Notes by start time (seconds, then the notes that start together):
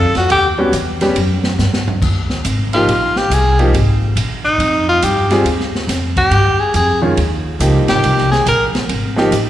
Already playing: F2 A4
0.15 F#4, muted upright bass stroke, snare, ride
0.30 D#2 G4, ride
0.58 G3 B3 C#4 F#4
0.72 E2, hi-hat pedal, ride
1.01 G3 B3 C#4 G4, snare, ride
1.15 F#2, ride
1.44 snare
1.58 G2, snare, hi-hat pedal
1.73 snare
1.88 floor tom
2.02 D#2, kick, crash
2.30 snare
2.45 G#1, hi-hat pedal, ride
2.73 F3 A#3 D#4 F4 G4, ride
2.87 A#1, ride
3.16 G4, snare
3.30 C2 G#4, hi-hat pedal, ride
3.59 F3 A#3 D#4 G4, ride
3.73 G#1, ride
4.16 A#1, hi-hat pedal, ride
4.45 D#4
4.58 F2, ride
4.89 F4
5.02 G2 G4, hi-hat pedal, ride
5.31 G3 C4 F4 G#4, snare, ride
5.44 D#2, ride
5.60 snare
5.75 snare
5.87 F2, snare, hi-hat pedal, ride
6.17 G4, kick, ride
6.31 G2, ride
6.60 G#4
6.74 F2 G#4, hi-hat pedal, ride
7.02 D#3 G#3 C#4 F4
7.17 D#2, ride
7.59 C#2 F3 A#3 D#4 G4, hi-hat pedal, ride
7.74 C2
7.88 G#1 G4, snare, ride
8.03 C2, ride
8.18 snare
8.31 G#4, snare
8.46 A#1 A#4, hi-hat pedal, ride
8.75 snare, ride
8.89 G#1, ride
9.16 F3 A#3 D#4 G4, snare
9.31 A1, hi-hat pedal, ride